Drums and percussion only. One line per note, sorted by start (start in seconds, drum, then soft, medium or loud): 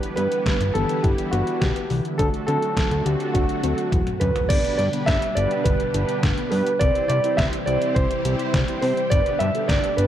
0.03 closed hi-hat medium
0.17 closed hi-hat medium
0.32 closed hi-hat medium
0.46 kick loud
0.46 snare loud
0.46 closed hi-hat medium
0.61 closed hi-hat medium
0.75 closed hi-hat medium
0.89 closed hi-hat medium
1.04 kick loud
1.04 closed hi-hat medium
1.18 closed hi-hat medium
1.33 closed hi-hat medium
1.47 closed hi-hat medium
1.62 kick loud
1.62 snare loud
1.62 closed hi-hat medium
1.76 closed hi-hat medium
1.90 open hi-hat medium
2.05 closed hi-hat medium
2.19 kick loud
2.19 closed hi-hat medium
2.34 closed hi-hat medium
2.48 closed hi-hat medium
2.62 closed hi-hat medium
2.77 kick loud
2.77 snare loud
2.77 closed hi-hat medium
2.91 closed hi-hat medium
3.06 closed hi-hat medium
3.20 closed hi-hat medium
3.35 kick loud
3.35 closed hi-hat medium
3.49 closed hi-hat medium
3.64 closed hi-hat medium
3.78 closed hi-hat medium
3.92 kick loud
3.92 closed hi-hat medium
3.92 high tom medium
4.07 closed hi-hat medium
4.07 mid tom medium
4.21 closed hi-hat medium
4.21 mid tom medium
4.36 closed hi-hat medium
4.36 floor tom medium
4.50 kick loud
4.50 closed hi-hat medium
4.50 crash loud
4.65 closed hi-hat medium
4.79 closed hi-hat medium
4.93 closed hi-hat medium
5.08 kick loud
5.08 snare loud
5.08 closed hi-hat medium
5.22 closed hi-hat medium
5.37 closed hi-hat medium
5.51 closed hi-hat medium
5.66 kick loud
5.66 closed hi-hat medium
5.80 closed hi-hat medium
5.94 closed hi-hat medium
6.09 closed hi-hat medium
6.23 kick loud
6.23 snare loud
6.23 closed hi-hat medium
6.38 closed hi-hat medium
6.52 open hi-hat medium
6.67 closed hi-hat medium
6.81 kick loud
6.81 closed hi-hat medium
6.95 closed hi-hat medium
7.10 closed hi-hat medium
7.24 closed hi-hat medium
7.38 kick loud
7.38 snare loud
7.38 closed hi-hat medium
7.53 closed hi-hat medium
7.67 closed hi-hat medium
7.82 closed hi-hat medium
7.96 kick loud
7.96 closed hi-hat medium
8.11 closed hi-hat medium
8.25 closed hi-hat medium
8.39 closed hi-hat medium
8.54 kick loud
8.54 snare loud
8.54 closed hi-hat medium
8.68 closed hi-hat medium
8.82 open hi-hat medium
8.97 closed hi-hat medium
9.12 kick loud
9.12 closed hi-hat medium
9.26 closed hi-hat medium
9.40 closed hi-hat medium
9.55 closed hi-hat medium
9.69 kick loud
9.69 snare loud
9.69 closed hi-hat medium
9.84 closed hi-hat medium
9.98 closed hi-hat medium